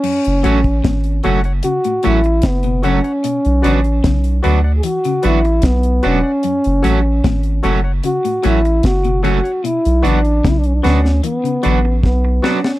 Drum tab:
CC |x---------------|----------------|----------------|----------------|
HH |-xxxxxxxxxxxxxxx|xxxxxxx-xxxxxxx-|xxx-xxx-xxxxxxxx|xxxxxxx-xxx-----|
SD |----o-------o---|----o-------o---|----o-------o---|----o-oo----o-oo|
BD |---oo-------o---|----o-------o---|----o-------o---|----o-------o---|